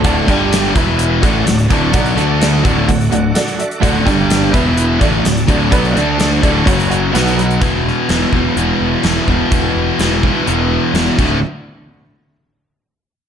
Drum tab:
CC |----------------|----------------|----------------|----------------|
HH |x-x-x-x-x-x-xxx-|xxx-x-x-xxx-xxxx|x-x-x-x-x-x-xxx-|xxx-x-x-xxx-xxxx|
SD |--o-o-------o---|--o-o-------o---|--o-o-------o---|--o-o-------o---|
BD |o-o---o---o---o-|o-----o-o-------|o-o---o---o---o-|o-----o-o-------|

CC |----------------|--------------x-|----------------|
HH |x---x---x---x---|x---x---x---x---|----------------|
SD |--o-o-------o---|----o-------o---|----------------|
BD |o-----o-------o-|o-----o-------o-|----------------|